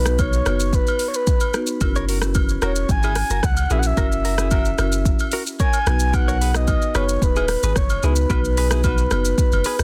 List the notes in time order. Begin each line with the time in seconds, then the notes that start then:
Already playing: B1 B4
0.06 B3 D#4 F#4 B4, cross-stick, shaker
0.19 C#5, kick, high agogo, shaker
0.33 shaker
0.46 F#1 B3 D#4 F#4 B4, cross-stick, high agogo, shaker
0.60 shaker
0.73 B4, kick, shaker
0.87 high agogo, shaker
0.99 open hi-hat, shaker
1.08 C#5
1.14 B4, shaker
1.27 kick, shaker
1.40 high agogo, shaker
1.54 B3 D#4 F#4 B4, cross-stick, shaker
1.67 shaker
1.81 F#1 C#4 E4 F#4 A#4, kick, high agogo, shaker
1.96 A#4 C#5, shaker
2.09 F#4 A#4, open hi-hat, shaker
2.22 C#4 E4 F#4 A#4, cross-stick, shaker
2.35 kick, high agogo, shaker
2.49 shaker
2.62 E1 C#4 E4 F#4 A#4 C#5, cross-stick, high agogo, shaker
2.76 shaker
2.89 G#1 G#5, kick, shaker
3.03 E4 G#4, high agogo, shaker
3.15 cross-stick, open hi-hat, shaker
3.30 F#1 F#4 A#4, shaker
3.43 C#2 F#5, kick, cross-stick, shaker
3.57 high agogo, shaker
3.70 A#1 C#4 E4 F#4 G#4 A#4 E5, shaker
3.79 F#5
3.83 E5, shaker
3.97 F#1 C#4 E4 F#4 A#4, kick, high agogo, shaker
4.12 shaker
4.25 F#4 A#4, open hi-hat, shaker
4.38 C#4 E4 F#4 G#4 A#4, cross-stick, shaker
4.51 F#4 A#4, kick, high agogo, shaker
4.65 shaker
4.78 F#1 C#4 E4 F#4 A#4, cross-stick, high agogo, shaker
4.92 shaker
5.05 kick, shaker
5.19 high agogo, shaker
5.32 F#4 A#4, open hi-hat, shaker
5.47 shaker
5.60 A#4 C#5 G#5, kick, shaker
5.73 high agogo, shaker
5.86 B1 B3 D#4 F#4 B4, cross-stick, shaker
5.99 shaker
6.13 B3 D#4 F#4 B4 F#5, kick, high agogo, shaker
6.28 A#4 C#5, shaker
6.41 G#4 B4, open hi-hat, shaker
6.54 B3 D#4 F#4 B4 D#5, cross-stick, shaker
6.67 kick, high agogo, shaker
6.82 shaker
6.95 F#1 B3 D#4 F#4 G#4 B4 C#5, cross-stick, high agogo, shaker
7.09 shaker
7.22 D#1 B4, kick, shaker
7.36 E4 G#4, high agogo, shaker
7.48 cross-stick, open hi-hat, shaker
7.63 G#1 G#4 B4, shaker
7.76 F#1 C#5, kick, cross-stick, shaker
7.89 high agogo, shaker
8.03 C#2 B3 D#4 E4 F#4 G#4 B4, shaker
8.16 shaker
8.30 B1 B3 D#4 F#4 B4, kick, high agogo, shaker
8.45 shaker
8.57 G#4 B4, open hi-hat, shaker
8.71 B3 D#4 E4 F#4 G#4 B4, cross-stick, shaker
8.84 F#4 B4, kick, high agogo, shaker
8.98 shaker
9.11 F#1 B3 D#4 F#4 B4, cross-stick, high agogo, shaker
9.25 shaker
9.38 kick, shaker
9.52 F#1, high agogo, shaker
9.64 G#4 B4, open hi-hat, shaker
9.79 B1, cross-stick, shaker